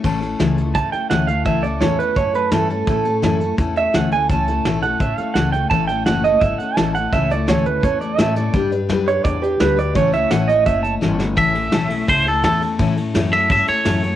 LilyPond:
<<
  \new Staff \with { instrumentName = "Pedal steel guitar" } { \time 4/4 \key a \mixolydian \tempo 4 = 169 r2 a''8 g''8 fis''8 f''8 | e''8 d''8 cis''8 b'8 cis''8 b'8 a'8 a'8~ | a'2 r8 e''8 fis''8 gis''8 | a''4. fis''8 e''8 f''8 fis''8 g''8 |
a''8 g''8 fis''8 dis''8 e''8 fis''8 a''8 fis''8 | e''8 d''8 cis''8 b'8 cis''8 d''8 e''8 d''8~ | d''8 r4 cis''8 d''8 g'8 b'8 d''8 | cis''8 e''8 fis''8 dis''8 e''8 a''8 r4 |
r1 | r1 | }
  \new Staff \with { instrumentName = "Clean electric guitar" } { \time 4/4 \key a \mixolydian r1 | r1 | r1 | r1 |
r1 | r1 | r1 | r1 |
e''2 c''8 a'8 a'8 r8 | r4. e''8 e''8 cis''4. | }
  \new Staff \with { instrumentName = "Steel-string acoustic guitar" } { \time 4/4 \key a \mixolydian <a, e a cis' e' a'>8 <a cis' e' a'>8 <a, e a cis' e' a'>8 <a cis' e' a'>8 <a cis' e' a'>8 <a cis' e' a'>8 <a, e a cis' e' a'>8 <a cis' e' a'>8 | <a, e a cis' e' a'>8 <a cis' a'>8 <a, e a cis' e' a'>8 <a cis' e' a'>8 <a cis' e' a'>8 <a cis' e' a'>8 <a, e a cis' e' a'>8 <a cis' e' a'>8 | <a, e a cis' e' a'>8 <a cis' e' a'>8 <a, e a cis' e' a'>8 <a cis' e' a'>8 <a cis' e' a'>8 <a cis' a'>8 <a, e a cis' e' a'>8 <a cis' e' a'>8 | <a, e a cis' e' a'>8 <a cis' e' a'>8 <a, e a cis' e' a'>8 <a cis' e' a'>8 <a cis' e' a'>8 <a cis' e' a'>8 <a, e a cis' e' a'>8 <a cis' e' a'>8 |
<a, e a cis' e' a'>8 <a cis' e' a'>8 <a, e a cis' e' a'>8 <a cis' e' a'>8 <a cis' e' a'>8 <a cis' e' a'>8 <a, e a cis' e' a'>8 <a cis' e' a'>8 | <a, e a cis' e' a'>8 <a cis' e' a'>8 <a, e a cis' e' a'>8 <a cis' e' a'>8 <a cis' e' a'>8 <a cis' e' a'>8 <a, e a cis' e' a'>8 <a cis' e' a'>8 | <g d' g' b'>8 <d' g' b'>8 <g d' g' b'>8 <d' g' b'>8 <g d' g' b'>8 <d' g' b'>8 <g d' g' b'>8 <d' g' b'>8 | <a, e a cis' e' cis''>8 <a cis' e' cis''>8 <a, e a cis' e' cis''>8 <a cis' e' cis''>8 <a cis' e' cis''>8 <a cis' e' cis''>8 <a, e a cis' e' cis''>8 <a cis' e' cis''>8 |
<a, e a cis' e' a'>8 <a cis' e' a'>8 <a, e a cis' e' a'>8 <a cis' e' a'>8 <a cis' e' a'>8 <a cis' e' a'>8 <a, e a cis' e' a'>8 <a cis' e' a'>8 | <a, e a cis' e' a'>8 <a cis' e' a'>8 <a, e a cis' e' a'>8 <a cis' e' a'>8 <a cis' e' a'>8 <a cis' e' a'>8 <a, e a cis' e' a'>8 <a cis' e' a'>8 | }
  \new Staff \with { instrumentName = "Upright bass" } { \clef bass \time 4/4 \key a \mixolydian a,,4 cis,4 e,8 r8 d,4 | cis,4 e,4 fis,4 g,4 | a,4 fis,4 e,4 d,4 | cis,4 b,,4 a,,8 r8 cis,4 |
a,,4 fis,,4 g,,8 r8 a,,4 | cis,4 d,4 e,4 a,4 | g,4 fis,4 e,4 d,4 | cis,4 a,,4 fis,,4 g,,4 |
a,,4 b,,4 cis,4 e,4 | a,4 fis,4 g,8 r8 fis,4 | }
  \new DrumStaff \with { instrumentName = "Drums" } \drummode { \time 4/4 <cymc bd>8 hh8 <hh sn>8 hh8 <hh bd>8 hh8 <hh sn>8 hh8 | <hh bd>8 hh8 <hh sn>8 hh8 <hh bd>8 hh8 <hh sn>8 hh8 | <hh bd>8 hh8 <hh sn>8 hh8 <hh bd>8 hh8 <hh sn>8 hh8 | <hh bd>8 hh8 <hh sn>8 hh8 <hh bd>8 hh8 <hh sn>8 hh8 |
<hh bd>8 hh8 <hh sn>8 hh8 <hh bd>8 hh8 <hh sn>8 hh8 | <hh bd>8 hh8 <hh sn>8 hh8 <hh bd>8 hh8 <hh sn>8 hh8 | <hh bd>8 hh8 <hh sn>8 hh8 <hh bd>8 hh8 <hh sn>8 hh8 | <hh bd>8 hh8 <hh sn>8 hh8 <hh bd>8 hh8 sn8 sn8 |
<bd cymr>8 cymr8 <cymr sn>8 cymr8 <bd cymr>8 cymr8 <cymr sn>8 cymr8 | <bd cymr>8 cymr8 <cymr sn>8 cymr8 <bd cymr>8 cymr8 <cymr sn>8 cymr8 | }
>>